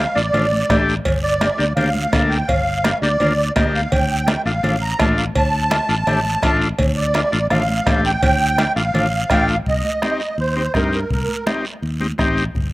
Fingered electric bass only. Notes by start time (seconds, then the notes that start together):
0.16 A1
0.34 A1
0.70 A1
1.06 G1
1.59 D2
1.77 D2
2.13 D2
2.49 G1
3.02 D2
3.20 D2
3.56 D2
3.92 D2
4.45 A1
4.64 A1
5.00 A1
5.36 D2
5.89 A1
6.07 A1
6.43 A1
6.79 D2
7.33 A1
7.51 A1
7.87 A1
8.23 D2
8.76 A1
8.94 A1
9.30 A1
9.66 C2
10.38 D#2
10.75 G2
11.10 C2
11.82 D#2
12.19 A1
12.55 G1